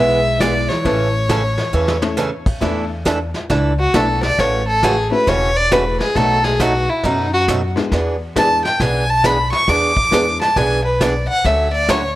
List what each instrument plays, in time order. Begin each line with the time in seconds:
Already playing: upright bass B1, steel-string acoustic guitar E3 G#3 B3 E4 G#4, honky-tonk piano G#3 B3 E4 G#4, hollow-body jazz guitar G#3, fiddle E5
0.40 steel-string acoustic guitar E3 G#3 B3 E4 G#4, honky-tonk piano G#3 B3 E4 G#4, hollow-body jazz guitar G#3, fiddle D5, kick, snare, hi-hat pedal
0.69 hollow-body jazz guitar E3, fiddle C#5, snare
0.84 upright bass A1, steel-string acoustic guitar C#3 E3 A3 C#4 A4, honky-tonk piano A3 C#4 E4 A4, brush sweep, kick, snare
1.29 steel-string acoustic guitar C#3 E3 A3 C#4 A4, kick, snare, hi-hat pedal
1.58 snare
1.73 upright bass E2, steel-string acoustic guitar C#3 E3 A3 C#4 A4
1.88 snare
2.02 honky-tonk piano A3 C#4 E4 A4, snare
2.17 steel-string acoustic guitar C#3 E3 A3 C#4 A4, snare, hi-hat pedal
2.46 kick, crash
2.60 upright bass E2, steel-string acoustic guitar E3 A3 D4 E4 A4, honky-tonk piano A3 B3 D4 E4 A4, brush sweep, kick, snare
3.05 steel-string acoustic guitar E3 A3 D4 E4 A4, kick, snare, hi-hat pedal
3.34 snare
3.50 upright bass C#2, steel-string acoustic guitar E3 A3 D4 E4 A4, brush sweep, kick, snare
3.79 fiddle F#4
3.94 upright bass B1, steel-string acoustic guitar E3 A3 D4 E4 A4, honky-tonk piano A3 B3 D4 E4 A4, fiddle A4, kick, snare, hi-hat pedal
4.23 fiddle D5, snare
4.38 upright bass A1, steel-string acoustic guitar C#3 E3 A3 C#4 F#4, fiddle C#5, brush sweep, kick, snare
4.67 fiddle A4
4.83 steel-string acoustic guitar C#3 E3 A3 C#4 F#4, fiddle G#4, kick, snare, hi-hat pedal
5.11 honky-tonk piano A3 C#4 E4 F#4 A4, fiddle B4
5.27 upright bass E1, steel-string acoustic guitar C#3 E3 A3 C#4 F#4, fiddle C#5, brush sweep, kick, snare
5.56 fiddle D5
5.71 steel-string acoustic guitar C#3 E3 A3 C#4 F#4, honky-tonk piano A3 C#4 E4 F#4 G#4, fiddle B4, kick, snare, hi-hat pedal
6.00 fiddle G#4, snare
6.15 upright bass B1, steel-string acoustic guitar B2 F#3 A3 D#4 F#4, honky-tonk piano A3 B3 D#4 F#4 A4, fiddle A4, brush sweep, kick, snare
6.44 fiddle G#4, snare
6.60 steel-string acoustic guitar B2 F#3 A3 D#4 F#4, fiddle F#4, kick, snare, hi-hat pedal
6.89 fiddle E4
7.03 upright bass F#2, steel-string acoustic guitar B2 F#3 A3 D#4 F#4, fiddle D#4, brush sweep, kick, snare
7.33 fiddle F#4
7.48 steel-string acoustic guitar B2 F#3 A3 D#4 F#4, kick, snare, hi-hat pedal
7.76 honky-tonk piano G#3 B3 D4 E4 G#4, snare
7.92 upright bass E2, steel-string acoustic guitar E3 B3 D4 G#4, brush sweep, kick, snare
8.36 steel-string acoustic guitar E3 B3 D4 G#4, honky-tonk piano G#3 B3 D4 E4 G#4, fiddle A5, kick, snare, hi-hat pedal
8.65 fiddle G5, snare
8.80 upright bass B1, steel-string acoustic guitar E3 B3 D4 G#4, fiddle G#5, brush sweep, kick, snare
9.10 fiddle A5
9.24 steel-string acoustic guitar E3 B3 D4 G#4, fiddle B5, kick, snare, hi-hat pedal
9.52 fiddle C#6, snare
9.68 upright bass E2, steel-string acoustic guitar E3 B3 D4 G#4, fiddle D6, brush sweep, kick, snare
9.97 kick
10.11 steel-string acoustic guitar E3 B3 D4 G#4, honky-tonk piano G#3 B3 D4 E4 G#4, kick, snare, hi-hat pedal
10.41 fiddle A5, snare
10.56 upright bass B1, steel-string acoustic guitar E3 B3 D4 G#4, fiddle G#5, brush sweep, kick, snare
10.85 fiddle B4
11.01 steel-string acoustic guitar E3 B3 D4 G#4, fiddle D5, kick, snare, hi-hat pedal
11.28 fiddle F#5
11.44 upright bass D2, steel-string acoustic guitar D3 F#3 A3 C#4 F#4, fiddle E5, brush sweep, kick, snare
11.73 fiddle D5
11.89 steel-string acoustic guitar D3 F#3 A3 C#4 F#4, fiddle C#5, kick, snare, hi-hat pedal